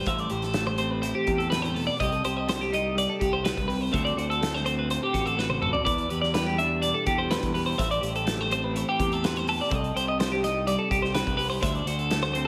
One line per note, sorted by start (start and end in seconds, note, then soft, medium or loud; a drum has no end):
0.06 0.27 A1 medium
0.06 1.50 A2 medium
0.06 2.01 C5 medium
0.06 0.20 E5 medium
0.06 kick loud
0.06 closed hi-hat medium
0.18 0.32 D5 medium
0.18 closed hi-hat soft
0.30 1.12 A1 medium
0.30 1.26 G4 medium
0.30 0.43 C5 medium
0.30 closed hi-hat medium
0.42 0.67 A4 medium
0.42 snare soft
0.42 closed hi-hat soft
0.54 2.04 A3 medium
0.54 snare loud
0.54 closed hi-hat medium
0.67 0.77 C5 medium
0.78 2.72 C4 medium
0.78 0.91 C5 medium
0.78 closed hi-hat medium
0.91 1.02 B4 medium
1.02 1.97 E3 medium
1.02 1.15 C5 medium
1.02 closed hi-hat medium
1.15 1.40 G4 medium
1.27 1.88 E2 medium
1.27 1.97 G4 medium
1.27 kick medium
1.27 closed hi-hat medium
1.38 1.50 A4 medium
1.38 closed hi-hat soft
1.50 1.75 A2 medium
1.50 1.62 B4 medium
1.50 snare loud
1.50 closed hi-hat medium
1.62 1.75 C5 medium
1.62 closed hi-hat soft
1.75 2.00 B2 medium
1.75 1.86 A4 medium
1.75 open hi-hat medium
1.87 2.00 D5 medium
2.00 2.21 C2 loud
2.00 3.43 C3 medium
2.00 2.12 G4 medium
2.00 2.24 D#5 medium
2.00 kick loud
2.00 closed hi-hat medium
2.12 3.94 A4 medium
2.12 closed hi-hat soft
2.25 3.06 C2 medium
2.25 3.19 G4 medium
2.25 2.37 C5 medium
2.25 closed hi-hat medium
2.37 2.49 D#5 medium
2.48 2.94 G3 medium
2.48 2.61 C5 medium
2.48 snare loud
2.48 closed hi-hat medium
2.61 2.73 G4 medium
2.61 snare soft
2.72 3.91 D#4 medium
2.72 2.98 D#5 medium
2.72 closed hi-hat medium
2.95 3.90 G3 medium
2.95 3.10 D5 medium
2.95 closed hi-hat medium
3.10 3.21 A4 medium
3.20 3.52 C2 medium
3.20 3.90 G4 medium
3.20 3.33 G4 medium
3.20 kick medium
3.20 closed hi-hat medium
3.33 3.44 C5 medium
3.43 3.66 B2 medium
3.43 3.67 B4 medium
3.43 snare loud
3.43 closed hi-hat medium
3.58 3.88 C2 medium
3.58 kick medium
3.58 closed hi-hat soft
3.67 3.92 C3 medium
3.67 3.81 B4 medium
3.67 open hi-hat medium
3.81 3.93 C5 medium
3.92 4.14 D2 loud
3.92 5.84 D3 medium
3.92 4.40 A3 medium
3.92 4.63 C4 medium
3.92 4.16 F#4 medium
3.92 5.37 C5 medium
3.92 4.05 E5 medium
3.92 kick medium
3.92 closed hi-hat medium
4.05 4.18 D5 medium
4.05 closed hi-hat soft
4.17 4.98 D2 medium
4.17 5.12 F#4 medium
4.17 4.30 C5 medium
4.17 closed hi-hat medium
4.30 4.54 A4 medium
4.30 closed hi-hat soft
4.41 5.83 A3 medium
4.41 snare loud
4.41 closed hi-hat medium
4.54 4.65 C5 medium
4.54 snare soft
4.65 5.86 C4 medium
4.65 4.78 C5 medium
4.65 closed hi-hat medium
4.79 4.90 B4 medium
4.88 5.83 A2 medium
4.88 5.03 C5 medium
4.88 closed hi-hat medium
5.03 5.26 G4 medium
5.13 5.75 A1 loud
5.13 5.61 F#4 medium
5.13 kick medium
5.13 closed hi-hat medium
5.26 5.39 A4 medium
5.26 closed hi-hat soft
5.37 5.83 B4 medium
5.37 5.49 B4 medium
5.37 snare medium
5.50 5.61 C5 medium
5.50 high tom medium
5.62 5.83 F#4 medium
5.62 5.73 A4 medium
5.62 mid tom medium
5.73 5.84 D5 medium
5.73 floor tom medium
5.85 6.06 E2 medium
5.85 7.75 E3 medium
5.85 7.31 B4 medium
5.85 6.10 D5 medium
5.85 kick loud
5.85 closed hi-hat medium
5.98 closed hi-hat soft
6.10 6.91 E2 medium
6.10 7.06 G4 medium
6.10 6.21 B4 medium
6.10 closed hi-hat medium
6.22 6.34 D5 medium
6.22 snare soft
6.34 8.26 G3 medium
6.34 6.46 B4 medium
6.34 snare loud
6.34 closed hi-hat medium
6.47 6.59 G4 medium
6.58 7.77 D4 medium
6.58 6.82 E5 medium
6.58 closed hi-hat medium
6.82 7.76 B2 medium
6.82 6.95 D5 medium
6.82 closed hi-hat medium
6.94 7.06 A4 medium
7.06 7.37 E2 medium
7.06 7.55 G4 medium
7.06 7.19 G4 medium
7.06 kick medium
7.06 closed hi-hat medium
7.18 7.30 C5 medium
7.31 7.53 B4 medium
7.31 7.76 C5 medium
7.31 snare loud
7.31 closed hi-hat medium
7.43 7.73 E2 medium
7.43 kick medium
7.43 closed hi-hat soft
7.54 7.82 G4 medium
7.54 7.66 B4 medium
7.54 open hi-hat medium
7.66 7.78 C5 medium
7.78 7.99 A1 loud
7.78 9.68 A2 medium
7.78 9.25 C5 medium
7.78 7.91 E5 medium
7.78 kick loud
7.78 closed hi-hat medium
7.91 8.03 D5 medium
7.91 closed hi-hat soft
8.01 8.83 A1 medium
8.01 8.98 G4 medium
8.01 8.15 C5 medium
8.01 closed hi-hat medium
8.15 8.41 A4 medium
8.15 closed hi-hat soft
8.26 9.98 A3 medium
8.26 snare loud
8.26 closed hi-hat medium
8.41 8.51 C5 medium
8.51 10.43 C4 medium
8.51 8.64 C5 medium
8.51 closed hi-hat medium
8.64 8.77 B4 medium
8.74 9.68 E3 medium
8.74 8.88 C5 medium
8.74 closed hi-hat medium
8.89 9.13 G4 medium
9.00 9.60 E2 loud
9.00 9.47 G4 medium
9.00 kick medium
9.00 closed hi-hat medium
9.12 9.24 A4 medium
9.12 closed hi-hat soft
9.24 9.37 B4 medium
9.24 9.70 C5 medium
9.24 snare loud
9.24 closed hi-hat medium
9.36 9.48 C5 medium
9.36 closed hi-hat soft
9.47 9.69 G4 medium
9.47 9.60 A4 medium
9.47 open hi-hat medium
9.61 9.73 D5 medium
9.70 9.91 C2 loud
9.70 11.60 C3 medium
9.70 11.15 A4 medium
9.70 9.96 D#5 medium
9.70 kick loud
9.70 closed hi-hat medium
9.84 closed hi-hat soft
9.95 10.75 C2 medium
9.95 10.90 G4 medium
9.95 10.08 C5 medium
9.95 closed hi-hat medium
10.08 10.20 D#5 medium
10.19 10.66 G3 medium
10.19 10.32 C5 medium
10.19 snare loud
10.19 closed hi-hat medium
10.32 10.44 G4 medium
10.43 11.60 D#4 medium
10.43 10.67 D#5 medium
10.43 snare soft
10.43 closed hi-hat medium
10.67 11.60 G3 medium
10.67 10.79 D5 medium
10.67 closed hi-hat medium
10.79 10.91 A4 medium
10.91 11.21 C2 medium
10.91 11.03 G4 medium
10.91 11.37 G4 medium
10.91 kick medium
10.91 closed hi-hat medium
11.02 11.14 C5 medium
11.02 snare soft
11.14 11.36 B4 medium
11.14 11.60 C5 medium
11.14 snare loud
11.14 closed hi-hat medium
11.27 11.57 C2 medium
11.27 kick medium
11.27 closed hi-hat soft
11.37 11.60 G4 medium
11.37 11.49 B4 medium
11.37 open hi-hat medium
11.50 11.62 C5 medium
11.61 11.83 D2 loud
11.61 12.47 D3 medium
11.61 12.47 C5 medium
11.61 11.75 E5 medium
11.61 kick loud
11.61 closed hi-hat medium
11.75 11.87 D5 medium
11.75 closed hi-hat soft
11.86 12.46 D2 medium
11.86 12.47 F#4 medium
11.86 11.99 C5 medium
11.86 closed hi-hat medium
11.99 12.22 A4 medium
11.99 closed hi-hat soft
12.11 12.47 A3 medium
12.11 snare loud
12.11 closed hi-hat medium
12.23 12.32 C5 medium
12.23 snare soft
12.34 12.47 C4 medium
12.34 12.45 C5 medium
12.34 closed hi-hat medium